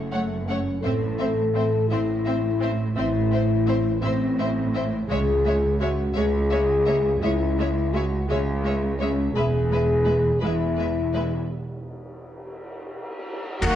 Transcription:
0.00 0.71 F#1 medium
0.00 0.70 F#2 medium
0.00 0.47 A3 medium
0.13 0.21 A3 soft
0.13 0.22 C#5 soft
0.13 0.21 F#5 soft
0.47 0.56 A3 soft
0.47 0.83 C#4 medium
0.47 0.58 C#5 soft
0.47 0.56 F#5 soft
0.81 1.77 A1 medium
0.81 1.77 A2 medium
0.81 0.92 C4 soft
0.81 1.87 A4 medium
0.81 0.92 C5 medium
0.81 0.92 E5 soft
1.19 1.27 C4 soft
1.19 1.29 C5 soft
1.19 1.27 E5 soft
1.55 1.63 C4 soft
1.55 1.63 C5 soft
1.55 1.64 E5 soft
1.89 2.84 A1 medium
1.89 2.84 A2 medium
1.89 1.99 C4 medium
1.89 2.78 E4 medium
1.89 1.99 C5 soft
1.89 1.98 E5 medium
2.26 2.34 C4 medium
2.26 2.36 C5 soft
2.26 2.34 E5 medium
2.60 2.68 C4 soft
2.60 2.70 C5 medium
2.60 2.70 E5 soft
2.95 3.90 A1 medium
2.95 3.91 A2 medium
2.95 3.04 C4 medium
2.95 4.00 E4 medium
2.95 3.06 C5 medium
2.95 3.05 E5 medium
3.31 3.40 C4 soft
3.31 3.42 C5 medium
3.31 3.39 E5 soft
3.66 3.74 C4 medium
3.66 3.76 C5 medium
3.66 3.75 E5 medium
4.02 4.97 A1 medium
4.02 4.97 A2 medium
4.02 4.10 C4 medium
4.02 4.72 C4 medium
4.02 4.13 C5 medium
4.02 4.11 E5 medium
4.39 4.47 C4 medium
4.39 4.49 C5 soft
4.39 4.47 E5 medium
4.74 4.82 C4 soft
4.74 4.82 C5 medium
4.74 4.83 E5 medium
5.08 6.03 C#2 medium
5.08 6.04 C#2 medium
5.08 5.17 G#3 medium
5.08 5.76 G#4 medium
5.08 5.18 C#5 medium
5.08 5.18 E5 medium
5.44 5.53 G#3 medium
5.44 5.55 C#5 medium
5.44 5.52 E5 medium
5.80 5.88 G#3 medium
5.80 6.16 F#4 medium
5.80 5.89 C#5 medium
5.80 5.88 E5 medium
6.14 7.10 C#2 medium
6.14 6.25 G#3 medium
6.14 7.23 G#4 loud
6.14 6.24 C#5 medium
6.14 6.22 E5 medium
6.50 6.60 G#3 medium
6.50 6.60 C#5 medium
6.50 6.58 E5 medium
6.86 6.96 G#3 medium
6.86 6.96 C#5 medium
6.86 6.94 E5 medium
7.21 8.16 C#2 medium
7.21 8.17 C#2 medium
7.21 7.30 G#3 medium
7.21 7.93 E4 medium
7.21 7.32 C#5 medium
7.21 7.29 E5 medium
7.58 7.66 G#3 medium
7.58 7.67 C#5 medium
7.58 7.66 E5 medium
7.93 8.02 G#3 medium
7.93 8.29 F#4 medium
7.93 8.04 C#5 medium
7.93 8.02 E5 medium
8.29 9.23 C#2 medium
8.29 8.37 G#3 medium
8.29 9.00 G#4 medium
8.29 8.39 C#5 medium
8.29 8.38 E5 medium
8.64 8.72 G#3 medium
8.64 8.73 C#5 soft
8.64 8.73 E5 medium
8.99 9.08 G#3 medium
8.99 9.34 C#4 medium
8.99 9.07 C#5 medium
8.99 9.10 E5 medium
9.34 10.29 E1 medium
9.34 10.30 E2 medium
9.34 9.43 G#3 medium
9.34 10.39 G#4 medium
9.34 9.44 B4 medium
9.34 9.45 E5 medium
9.71 9.79 G#3 soft
9.71 9.80 B4 soft
9.71 9.81 E5 medium
10.05 10.14 G#3 soft
10.05 10.13 B4 medium
10.05 10.15 E5 soft
10.40 11.36 E1 medium
10.40 11.36 E2 medium
10.40 10.50 G#3 medium
10.40 11.49 E4 medium
10.40 10.48 B4 medium
10.40 10.52 E5 medium
10.77 10.85 G#3 soft
10.77 10.85 B4 soft
10.77 10.88 E5 soft
11.13 11.22 G#3 soft
11.13 11.21 B4 soft
11.13 11.24 E5 soft
13.61 13.69 D#2 medium
13.61 13.71 D#2 medium
13.61 13.76 F#3 medium
13.61 13.76 A#3 medium
13.61 13.76 D#4 medium
13.61 13.76 F#4 medium
13.61 13.76 A#4 medium
13.61 13.76 F#5 medium
13.61 concert bass drum medium
13.61 crash medium

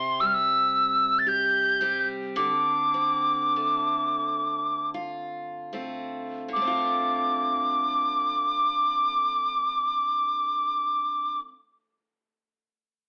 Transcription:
0.00 2.35 C3 medium
0.00 1.81 C4 soft
0.00 1.26 G4 soft
0.00 0.22 C6 medium
0.20 1.80 G3 soft
0.20 0.28 E6 medium
0.26 0.36 F6 soft
0.34 1.20 E6 medium
1.19 1.30 A6 soft
1.26 1.81 G4 soft
1.26 2.08 G6 medium
1.81 2.47 G3 soft
1.81 2.94 C4 soft
1.81 2.47 G4 soft
2.36 6.47 D3 soft
2.36 4.89 D6 medium
2.94 5.73 C4 soft
3.56 5.72 A3 soft
4.94 5.73 F4 soft
5.73 6.56 A3 soft
5.73 6.61 C4 soft
5.73 6.67 F4 soft
6.48 11.40 D3 soft
6.53 11.47 A3 soft
6.53 11.40 D6 soft
6.62 11.53 C4 soft
6.67 11.58 F4 soft

